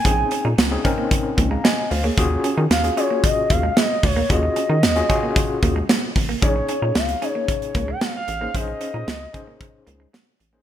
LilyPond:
<<
  \new Staff \with { instrumentName = "Soft synth lead" } { \time 4/4 \key bes \minor \tempo 4 = 113 aes''8. r2. r16 | r4 f''8 des''8 ees''8 f''8 ees''8 des''8 | ees''2. r4 | des''4 f''8 des''4~ des''16 g''16 f''16 f''8. |
ees''2. r4 | }
  \new Staff \with { instrumentName = "Tine electric piano" } { \time 4/4 \key bes \minor << { r2 r8. <f'' bes''>16 <ees'' aes''>8 <c'' f''>16 <aes' des''>16~ | <aes' des''>16 r2. r8. | r1 | r1 |
r1 | } \\ { <c' des' ees' aes'>8. r8 <c' des' ees' aes'>16 <c' des' ees' bes'>4. r4 | <des' f' ges' aes'>8. r8 <des' f' ges' aes'>16 <des' f' ges' aes'>4. r4 | <des' f' ges' aes'>8. r8 <des' f' ges' aes'>16 <des' f' ges' aes'>4. r4 | <des' ees' aes' des''>4 r8 <des' ees' aes' des''>4. r8. <des' ees' aes' c''>16 |
<des' ees' aes' c''>4 r8 <des' ees' aes' c''>4. r8. <des' ees' aes' c''>16 | } >> }
  \new Staff \with { instrumentName = "Clean electric guitar" } { \time 4/4 \key bes \minor r8 des'16 ees'16 r8 des'16 bes16 r8 bes16 aes16 aes16 r8 bes16 | r8 des'16 ees'16 r8 des'16 bes16 r8 bes16 aes16 aes16 r8 bes16 | r8 des'16 ees'16 r8 des'16 bes16 r8 bes16 aes16 aes16 r8 bes16 | r8 des'16 ees'16 r8 des'16 bes16 r8 bes16 aes16 aes16 r8 bes16 |
r8 des'16 ees'16 r8 des'16 bes16 r8 bes16 aes16 aes16 r8 bes16 | }
  \new Staff \with { instrumentName = "Analog synth bass" } { \clef bass \time 4/4 \key bes \minor bes,,8 r16 bes,16 des,8 r4 des,8 r8 d,8 | ees,8 r16 ees16 ees,8 r4 ees,8 r8 d,8 | ees,8 r16 ees16 ees,8 r4 ees,8 r8 a,,8 | bes,,8 r16 bes,16 des,8 r4 des,8 r8 a,,8 |
bes,,8 r16 bes,16 des,8 r4 des,8 r8 a,,8 | }
  \new DrumStaff \with { instrumentName = "Drums" } \drummode { \time 4/4 <hh bd>8 hh8 <hh sn>8 <hh bd>8 <hh bd>8 <hh bd>8 <hh sn>8 hho8 | <hh bd>8 hh8 <hh sn>16 hh16 hh8 <hh bd>8 <hh bd>8 <hh sn>8 <hho bd>8 | <hh bd>8 hh8 <hh sn>16 hh16 <hh bd>8 <hh bd>8 <hh bd>8 <hh sn>8 <hho bd>8 | <hh bd>8 hh8 <hh sn>16 hh16 hh8 <hh bd>16 hh16 <hh bd>8 <hh sn>8 hh8 |
<hh bd>8 hh8 <hh sn>8 <hh bd>8 <hh bd>8 hh8 <hh sn>8 hh8 | }
>>